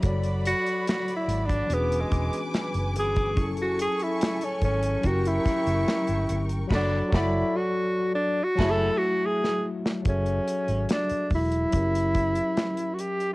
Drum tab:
CC |----------------|----------------|x--------x------|----------------|
HH |xxxxxxxxxxxxxxxx|xxxxxxxxxxxxxxxx|----------------|xxxxxxoxxxxxxxxx|
SD |----o-------o---|----o-----o-o---|o-o------o---o-o|----o-------o---|
BD |o------o--o----o|o-----o-o-o-----|o-o------o------|o-----o-o-o-----|